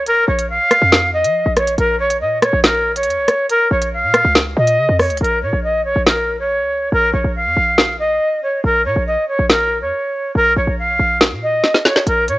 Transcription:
Already playing: 808-style bass C#2
0.07 flute A#4, closed hi-hat
0.28 808-style bass A#1, flute C#5
0.39 closed hi-hat
0.49 flute F5
0.71 cross-stick, closed hi-hat
0.82 808-style bass F2
0.92 snare, closed hi-hat
1.13 flute D#5
1.24 808-style bass F3, closed hi-hat
1.46 808-style bass A#1
1.57 flute C#5, cross-stick, closed hi-hat
1.67 closed hi-hat
1.78 808-style bass A#1, flute A#4, closed hi-hat
1.99 flute C#5
2.10 closed hi-hat
2.21 808-style bass A#2, flute D#5
2.42 flute C#5, cross-stick, closed hi-hat
2.53 808-style bass A#1
2.64 flute A#4, snare, closed hi-hat
2.95 flute C#5, closed hi-hat
3.03 808-style bass F2, closed hi-hat
3.10 closed hi-hat
3.17 808-style bass A#1
3.28 cross-stick, closed hi-hat
3.49 flute A#4, closed hi-hat
3.71 808-style bass A#1, flute C#5
3.82 closed hi-hat
3.93 flute F5
4.03 808-style bass A#2
4.14 cross-stick, closed hi-hat
4.24 808-style bass C#2
4.35 snare, closed hi-hat
4.57 808-style bass A#2, flute D#5
4.67 closed hi-hat
4.78 808-style bass C#3
4.89 808-style bass F2
4.99 flute C#5, cross-stick, open hi-hat
5.10 808-style bass C#2, closed hi-hat
5.17 808-style bass A#1, flute A#4, closed hi-hat
5.24 closed hi-hat
5.42 808-style bass A#2, flute C#5
5.53 808-style bass A#1
5.64 flute D#5
5.85 flute C#5
5.96 808-style bass A#1
6.06 flute A#4, snare
6.39 flute C#5
6.60 808-style bass C#2
6.92 808-style bass A#1, flute A#4
7.13 808-style bass A#1, flute C#5
7.24 808-style bass A#1
7.35 flute F5
7.46 808-style bass F2
7.57 808-style bass A#1
7.78 snare
7.99 flute D#5
8.43 flute C#5
8.64 808-style bass A#1, flute A#4
8.85 808-style bass A#2, flute C#5
8.96 808-style bass A#1
9.07 flute D#5
9.28 flute C#5
9.39 808-style bass A#1
9.49 flute A#4, snare
9.81 808-style bass F2, flute C#5
10.35 808-style bass A#1, flute A#4
10.57 808-style bass A#1, flute C#5
10.67 808-style bass A#1
10.78 flute F5
10.99 808-style bass A#1
11.21 snare
11.32 808-style bass A#2
11.43 flute D#5
11.64 snare
11.74 snare
11.85 flute C#5, snare
11.96 snare
12.07 808-style bass A#1, flute A#4, closed hi-hat
12.28 808-style bass A#2, flute C#5, closed hi-hat

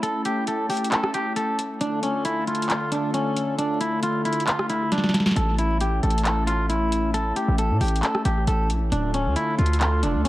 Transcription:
Already playing: analog synth pad A3 C#4 E4
0.03 clean electric guitar A4, closed hi-hat
0.25 clean electric guitar G4, closed hi-hat
0.47 clean electric guitar A4, closed hi-hat
0.70 clean electric guitar G4, closed hi-hat, open hi-hat
0.77 closed hi-hat
0.84 closed hi-hat
0.92 clean electric guitar A4, clap, closed hi-hat
1.04 cross-stick
1.14 clean electric guitar G4, closed hi-hat
1.36 clean electric guitar A4, closed hi-hat
1.59 closed hi-hat
1.81 analog synth pad D3 A3 F4 A4, clean electric guitar D4, closed hi-hat
2.03 clean electric guitar C#4, closed hi-hat
2.25 clean electric guitar E4, closed hi-hat
2.47 clean electric guitar F4, closed hi-hat
2.55 closed hi-hat
2.62 closed hi-hat
2.70 clean electric guitar F4, clap, closed hi-hat
2.92 clean electric guitar D4, closed hi-hat
3.14 clean electric guitar C#4, closed hi-hat
3.37 closed hi-hat
3.58 clean electric guitar D4, closed hi-hat
3.81 clean electric guitar E4, closed hi-hat
4.03 clean electric guitar F4, closed hi-hat
4.25 clean electric guitar E4, closed hi-hat
4.33 closed hi-hat
4.40 closed hi-hat
4.47 clean electric guitar F4, clap, closed hi-hat
4.59 cross-stick
4.70 clean electric guitar E4, closed hi-hat
4.92 clean electric guitar D4, snare, closed hi-hat
4.98 snare
5.04 snare
5.09 snare
5.14 snare, closed hi-hat
5.20 snare
5.26 snare
5.31 snare
5.36 808-style bass A1, analog synth pad A3 C#4 E4, clean electric guitar A4, closed hi-hat
5.58 clean electric guitar E4, closed hi-hat
5.80 clean electric guitar G4, closed hi-hat
6.03 808-style bass A1, clean electric guitar A4, closed hi-hat
6.10 closed hi-hat
6.18 closed hi-hat
6.25 clean electric guitar A4, clap, closed hi-hat
6.47 clean electric guitar F4, closed hi-hat
6.69 clean electric guitar E4, closed hi-hat
6.92 closed hi-hat
7.14 clean electric guitar A4, closed hi-hat
7.36 clean electric guitar G4, closed hi-hat
7.48 808-style bass A1
7.58 clean electric guitar A4, closed hi-hat
7.70 808-style bass A2
7.81 808-style bass A1, clean electric guitar G4, closed hi-hat, open hi-hat
7.88 closed hi-hat
7.96 closed hi-hat
8.03 clean electric guitar A4, clap, closed hi-hat
8.15 cross-stick
8.25 808-style bass A1, clean electric guitar G4, closed hi-hat
8.47 808-style bass A1, clean electric guitar A4, closed hi-hat
8.70 808-style bass A#1, closed hi-hat
8.81 808-style bass A1
8.92 808-style bass D1, analog synth pad D3 A3 F4 A4, clean electric guitar D4, closed hi-hat
9.14 clean electric guitar C#4, closed hi-hat
9.26 808-style bass D2
9.36 clean electric guitar E4, closed hi-hat
9.58 808-style bass D2, clean electric guitar F4, closed hi-hat
9.66 closed hi-hat
9.73 closed hi-hat
9.81 clean electric guitar F4, clap, closed hi-hat
10.03 808-style bass F1, clean electric guitar D4, closed hi-hat
10.15 808-style bass D2
10.25 clean electric guitar C#4, closed hi-hat

